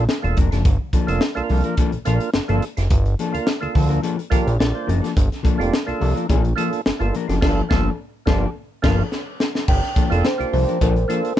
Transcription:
0.09 muted clean electric guitar stroke, snare
0.22 analog synth bass E1, tonewheel organ A#3 D4 F4 A4, muted clean electric guitar stroke, closed hi-hat
0.37 analog synth bass F1, clean electric guitar F3 A#3 D4 A#4, kick, closed hi-hat
0.51 analog synth bass F#1, clean electric guitar F3 A#3 D4 A4, tonewheel organ F4 G4, snare, closed hi-hat
0.65 analog synth bass G1, kick, closed hi-hat
0.93 clean electric guitar F3 A#3 D4 A4, kick, closed hi-hat
1.07 analog synth bass F1, tonewheel organ A#3 D4 F4 A4, closed hi-hat
1.21 muted clean electric guitar stroke, snare
1.35 analog synth bass C2, tonewheel organ A#3 D4 F4 A4, muted clean electric guitar stroke, closed hi-hat
1.44 tonewheel organ A#4
1.49 analog synth bass C2, clean electric guitar F3 A#3 D4 A4, open hi-hat
1.64 clean electric guitar F3 A#3 D4 A#4, closed hi-hat
1.77 clean electric guitar F3 A#3 D4 A4, kick, closed hi-hat
1.92 analog synth bass A#1, muted clean electric guitar stroke, closed hi-hat
2.05 analog synth bass A#1, clean electric guitar F3 A#3 D4 A4, tonewheel organ A#3 D4 F4 A#4, closed hi-hat
2.20 muted clean electric guitar stroke, closed hi-hat
2.34 analog synth bass G1, muted clean electric guitar stroke, snare
2.48 analog synth bass G1, clean electric guitar F3 A#3 D4 A4, tonewheel organ A#3 D4 F4 A4, closed hi-hat
2.62 muted clean electric guitar stroke, closed hi-hat
2.77 analog synth bass F#1, tonewheel organ F4 G4, muted clean electric guitar stroke, snare, closed hi-hat
2.90 analog synth bass G1, kick, closed hi-hat
3.06 closed hi-hat
3.19 clean electric guitar F3 A#3 D4 A4, closed hi-hat
3.33 analog synth bass D2, tonewheel organ A#3 D4 F4 A#4, closed hi-hat
3.47 muted clean electric guitar stroke, snare
3.61 analog synth bass D2, tonewheel organ A#3 D4 F4 A4, muted clean electric guitar stroke, closed hi-hat
3.75 analog synth bass D2, clean electric guitar F3 A#3 D4 A4, kick, open hi-hat
3.89 clean electric guitar F3 A#3 D4 A#4, closed hi-hat
4.03 clean electric guitar F3 A#3 D4 A4, closed hi-hat
4.19 muted clean electric guitar stroke, closed hi-hat
4.30 analog synth bass A#1, clean electric guitar F3 A#3 D4 A4, tonewheel organ A#3 D4 F4 G4 A#4, kick, closed hi-hat
4.47 analog synth bass A#1, muted clean electric guitar stroke, closed hi-hat
4.59 analog synth bass A#1, tonewheel organ D5, muted clean electric guitar stroke, snare
4.73 tonewheel organ A#3 D4 F4 C5, muted clean electric guitar stroke
4.87 analog synth bass F#1, clean electric guitar F3 A#3 D4 A#4, closed hi-hat
5.02 clean electric guitar F3 A#3 D4 A4, tonewheel organ F4 G4, snare, closed hi-hat
5.17 analog synth bass G1, kick, closed hi-hat
5.32 snare, closed hi-hat
5.43 clean electric guitar F3 A#3 D4 A4, kick, closed hi-hat
5.58 analog synth bass F1, tonewheel organ A#3 D4 F4 G4, closed hi-hat
5.72 muted clean electric guitar stroke, snare
5.86 analog synth bass C2, tonewheel organ A#3 D4 F4 A4, muted clean electric guitar stroke, closed hi-hat
6.00 analog synth bass C2, clean electric guitar F3 A#3 D4 A4, open hi-hat
6.15 clean electric guitar F3 A#3 D4 A#4, closed hi-hat
6.29 analog synth bass A#1, clean electric guitar F3 A#3 D4 A4, kick, closed hi-hat
6.45 muted clean electric guitar stroke, closed hi-hat
6.56 clean electric guitar F3 A#3 D4 A4, tonewheel organ A#3 D4 F4 A4, closed hi-hat
6.73 muted clean electric guitar stroke, closed hi-hat
6.86 analog synth bass G1, muted clean electric guitar stroke, snare
6.99 analog synth bass G1, tonewheel organ A#3 D4 F4 A4, muted clean electric guitar stroke, closed hi-hat
7.15 clean electric guitar F3 A#3 D4 A#4, closed hi-hat
7.28 analog synth bass F#1, clean electric guitar F3 A#3 D4 A4, tonewheel organ F4 G4, snare, closed hi-hat
7.41 analog synth bass G1, clean electric guitar F3 A#3 D4 A4, tonewheel organ A#3 D4 F4 A4, kick, snare, crash
7.69 analog synth bass G1, clean electric guitar F3 A#3 D4 A4, tonewheel organ A#3 D4 F4 A4, kick, snare
8.26 analog synth bass G1, clean electric guitar F3 A#3 D4 A4, tonewheel organ A#3 D4 F4, kick, snare
8.34 tonewheel organ G4
8.82 analog synth bass G1, clean electric guitar F3 A#3 D4 A4, tonewheel organ A#3 D4 F4 A#4, kick, snare, crash
9.12 snare
9.40 snare
9.55 snare
9.68 analog synth bass G1, kalimba G5, kick, crash
9.83 snare
9.96 clean electric guitar F3 A#3 D4 A4, kick, closed hi-hat
10.10 analog synth bass F1, tonewheel organ A#3 D4 F4 A4, closed hi-hat
10.25 kalimba C5, muted clean electric guitar stroke, snare
10.38 analog synth bass C2, tonewheel organ A#3 D4 F4 G4, muted clean electric guitar stroke, closed hi-hat
10.53 analog synth bass C2, clean electric guitar F3 A#3 D4 A4, kalimba C5, open hi-hat
10.68 clean electric guitar F3 A#3 D4 A#4, closed hi-hat
10.81 analog synth bass A#1, clean electric guitar F3 A#3 D4 A4, kalimba A#4, kick, closed hi-hat
10.95 muted clean electric guitar stroke, closed hi-hat
11.08 clean electric guitar F3 A#3 D4 A4, tonewheel organ A#3 D4 F4 A4, closed hi-hat
11.23 muted clean electric guitar stroke, closed hi-hat
11.36 muted clean electric guitar stroke

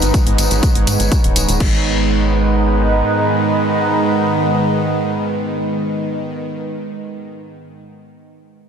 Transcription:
Already playing: synth drone G#2 D#3, ambient pad G#3 B3 D#4 B4 C#5
0.01 analog synth bass G#1, closed hi-hat, tambourine
0.14 kick, closed hi-hat, tambourine
0.27 analog synth bass G#1, closed hi-hat
0.38 analog synth bass G#1, open hi-hat, tambourine
0.51 analog synth bass G#1, closed hi-hat, tambourine
0.63 kick, closed hi-hat, tambourine
0.75 analog synth bass G#1, closed hi-hat
0.87 analog synth bass G#2, open hi-hat, tambourine
1.00 analog synth bass G#1, closed hi-hat, tambourine
1.12 kick, closed hi-hat, tambourine
1.24 analog synth bass D#1, closed hi-hat
1.36 analog synth bass D#1, open hi-hat, tambourine
1.49 analog synth bass D#1, closed hi-hat, tambourine
1.60 analog synth bass G#1, synth drone G#2 D#3, ambient pad G#3 B3 D#4 B4 D#5, kick, crash

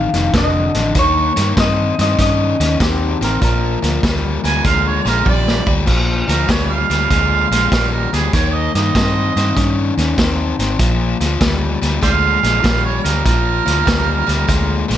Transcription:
Already playing: clean electric guitar F5
0.13 fingered electric bass F1, overdriven electric guitar F2 D#3, snare, closed hi-hat
0.34 fingered electric bass F1, overdriven electric guitar F2 D3, kick, snare, closed hi-hat
0.38 clean electric guitar D#5
0.74 fingered electric bass A1, overdriven electric guitar F2 D3, snare, closed hi-hat
0.95 fingered electric bass D#2, overdriven electric guitar D#3 A#3, kick, snare, closed hi-hat
0.99 clean electric guitar C#5
1.36 fingered electric bass G2, overdriven electric guitar D#3 A#3, snare, closed hi-hat
1.57 fingered electric bass G2, overdriven electric guitar D#3 C4, clean electric guitar D#5, kick, snare, closed hi-hat
1.99 fingered electric bass G2, overdriven electric guitar D#3 C4, clean electric guitar D#5, snare, closed hi-hat
2.18 fingered electric bass G2, overdriven electric guitar D#3 C#4, clean electric guitar D#5, kick, snare, closed hi-hat
2.60 fingered electric bass D#2, overdriven electric guitar D#3 C#4, snare, closed hi-hat
2.80 fingered electric bass D#2, overdriven electric guitar D#3 C4, clean electric guitar G4, kick, snare, closed hi-hat
3.21 fingered electric bass A1, overdriven electric guitar D#3 C4, clean electric guitar A#4, snare, closed hi-hat
3.41 fingered electric bass A#1, overdriven electric guitar A#2 F3, clean electric guitar A#4, kick, snare, closed hi-hat
3.82 fingered electric bass D2, overdriven electric guitar A#2 F3, snare, closed hi-hat
4.03 fingered electric bass D2, overdriven electric guitar A#2 G3, kick, snare, closed hi-hat
4.44 fingered electric bass D2, overdriven electric guitar A#2 G3, harmonica G#5, snare, closed hi-hat
4.64 fingered electric bass D2, overdriven electric guitar A#2 G#3, harmonica F5, kick, snare, closed hi-hat
4.87 harmonica C#5
5.05 fingered electric bass A#1, overdriven electric guitar A#2 G#3, harmonica A#4, snare, closed hi-hat
5.24 fingered electric bass A#1, overdriven electric guitar A#2 G3, harmonica D5, kick, high tom
5.48 snare
5.66 fingered electric bass D2, overdriven electric guitar A#2 G3, kick
5.86 fingered electric bass A#1, overdriven electric guitar A#2 F3, kick, snare, crash
6.28 fingered electric bass D2, overdriven electric guitar A#2 F3, harmonica A#4, snare, closed hi-hat
6.48 fingered electric bass D2, overdriven electric guitar A#2 G3, harmonica C#5, kick, snare, closed hi-hat
6.71 harmonica F5
6.90 fingered electric bass D2, overdriven electric guitar A#2 G3, snare, closed hi-hat
7.10 fingered electric bass D2, overdriven electric guitar A#2 G#3, kick, snare, closed hi-hat
7.51 fingered electric bass A#1, overdriven electric guitar A#2 G#3, snare, closed hi-hat
7.72 fingered electric bass A#1, overdriven electric guitar A#2 G3, kick, snare, closed hi-hat
7.92 harmonica A#4
8.13 fingered electric bass D2, overdriven electric guitar A#2 G3, harmonica G#4, snare, closed hi-hat
8.33 fingered electric bass D#2, overdriven electric guitar D#3 A#3, harmonica C#5, kick, snare, closed hi-hat
8.55 harmonica D#5
8.75 fingered electric bass G2, overdriven electric guitar D#3 A#3, harmonica D#5, snare, closed hi-hat
8.95 fingered electric bass G2, overdriven electric guitar D#3 C4, kick, snare, closed hi-hat
9.36 fingered electric bass G2, overdriven electric guitar D#3 C4, snare, closed hi-hat
9.56 fingered electric bass G2, overdriven electric guitar D#3 C#4, kick, snare, closed hi-hat
9.97 fingered electric bass D#2, overdriven electric guitar D#3 C#4, snare, closed hi-hat
10.18 fingered electric bass D#2, overdriven electric guitar D#3 C4, kick, snare, closed hi-hat
10.59 fingered electric bass G#1, overdriven electric guitar D#3 C4, snare, closed hi-hat
10.79 fingered electric bass A#1, overdriven electric guitar A#2 F3, kick, snare, closed hi-hat
11.20 fingered electric bass D2, overdriven electric guitar A#2 F3, snare, closed hi-hat
11.40 fingered electric bass D2, overdriven electric guitar A#2 G3, kick, snare, closed hi-hat
11.82 fingered electric bass D2, overdriven electric guitar A#2 G3, snare, closed hi-hat
12.01 fingered electric bass D2, overdriven electric guitar A#2 G#3, harmonica C5 D5 F5, kick, snare, closed hi-hat
12.43 fingered electric bass A#1, overdriven electric guitar A#2 G#3, snare, closed hi-hat
12.63 fingered electric bass A#1, overdriven electric guitar A#2 G3, kick, snare, closed hi-hat
12.85 harmonica C#5
13.05 fingered electric bass D2, overdriven electric guitar A#2 G3, harmonica A#4, snare, closed hi-hat
13.25 fingered electric bass A#1, overdriven electric guitar A#2 F3, harmonica A#4, kick, snare, closed hi-hat
13.66 fingered electric bass D2, overdriven electric guitar A#2 F3, snare, closed hi-hat
13.85 fingered electric bass D2, overdriven electric guitar A#2 G3, kick, snare, closed hi-hat
14.26 fingered electric bass D2, overdriven electric guitar A#2 G3, snare, closed hi-hat
14.47 fingered electric bass D2, overdriven electric guitar A#2 G#3, kick, snare, closed hi-hat
14.88 fingered electric bass A#1, overdriven electric guitar A#2 G#3, snare, closed hi-hat

